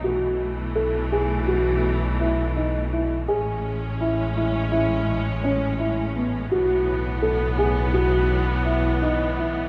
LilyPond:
<<
  \new Staff \with { instrumentName = "Grand piano" } { \time 9/8 \key a \lydian \tempo 4. = 56 fis'4 a'8 gis'8 fis'4 e'8 dis'8 e'8 | gis'4 e'8 e'8 e'4 cis'8 e'8 b8 | fis'4 a'8 gis'8 fis'4 e'8 dis'8 e'8 | }
  \new Staff \with { instrumentName = "String section" } { \clef bass \time 9/8 \key a \lydian << { <e a>1~ <e a>8 | <gis cis'>1~ <gis cis'>8 | <e b>1~ <e b>8 | } \\ { b,1~ b,8 | a,1~ a,8~ | a,1~ a,8 | } >> }
  \new Staff \with { instrumentName = "Double bass" } { \clef bass \time 9/8 \key a \lydian b,,1~ b,,8 | a,,1~ a,,8 | b,,1~ b,,8 | }
>>